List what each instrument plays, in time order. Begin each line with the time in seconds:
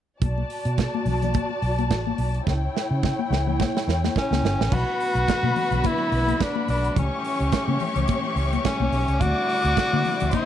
0.21 fingered electric bass B1, string section F#4 D5 A5, kick, closed hi-hat, muted conga
0.38 muted conga
0.50 open hi-hat
0.65 fingered electric bass B2, closed hi-hat
0.78 kick, snare, closed hi-hat, muted conga
0.95 high conga
1.05 fingered electric bass B1, open hi-hat, low conga
1.22 closed hi-hat, high conga, low conga
1.34 kick, closed hi-hat, high conga
1.49 muted conga
1.62 fingered electric bass B1, open hi-hat
1.79 closed hi-hat, high conga
1.91 fingered electric bass A1, kick, snare, closed hi-hat
2.07 high conga
2.18 fingered electric bass B1, open hi-hat
2.35 closed hi-hat
2.47 fingered electric bass C#2, string section E4 C#5 G5, kick, snare, muted conga
2.77 snare
2.91 fingered electric bass C#3
3.03 kick, snare, muted conga
3.19 high conga
3.30 fingered electric bass C#2, snare, low conga
3.47 high conga, low conga
3.60 kick, snare, muted conga, high conga
3.75 snare, muted conga
3.87 fingered electric bass E2, snare
4.04 snare, high conga
4.16 tenor saxophone C#4, kick, snare, muted conga
4.31 fingered electric bass C#2, snare, muted conga, high conga
4.43 fingered electric bass G1, snare
4.59 fingered electric bass A1, snare
4.71 fingered electric bass B1, string section D3 F#3 A3 B3 F#4 B4 B5, tenor saxophone F#4, kick, crash, low conga
5.00 open hi-hat
5.15 fingered electric bass B1, closed hi-hat
5.28 kick, snare, closed hi-hat, muted conga
5.43 fingered electric bass B2, high conga
5.56 open hi-hat, low conga
5.71 fingered electric bass B1, closed hi-hat, low conga
5.84 tenor saxophone E4, kick, closed hi-hat, muted conga, high conga
5.98 muted conga
6.12 fingered electric bass B1, open hi-hat
6.28 closed hi-hat, high conga
6.41 tenor saxophone D4, kick, snare, closed hi-hat
6.56 muted conga, high conga
6.68 fingered electric bass B1, tenor saxophone D4, open hi-hat
6.84 closed hi-hat
6.96 fingered electric bass C#2, string section E3 G3 C#4 G4 C#5 C#6, tenor saxophone C#4, kick, closed hi-hat, low conga
7.25 open hi-hat
7.40 fingered electric bass C#2, closed hi-hat
7.52 kick, snare, closed hi-hat
7.68 fingered electric bass C#3, high conga
7.80 open hi-hat, low conga
7.96 fingered electric bass C#2, closed hi-hat, low conga
8.08 kick, closed hi-hat, muted conga, high conga
8.23 muted conga
8.36 fingered electric bass C#2, open hi-hat
8.53 closed hi-hat, high conga
8.65 tenor saxophone C#4, kick, snare, closed hi-hat
8.80 fingered electric bass B1, high conga
8.92 fingered electric bass B1, open hi-hat
9.08 fingered electric bass C#2, closed hi-hat
9.21 fingered electric bass D2, string section D3 C4 E4 D5 D6, tenor saxophone F#4, kick, closed hi-hat, muted conga, low conga
9.49 open hi-hat
9.64 fingered electric bass D2, closed hi-hat
9.77 kick, snare, closed hi-hat
9.93 fingered electric bass D3, high conga
10.04 open hi-hat, low conga
10.20 fingered electric bass D2, closed hi-hat, low conga
10.31 tenor saxophone E4, string section C5 C6, kick, closed hi-hat, muted conga, high conga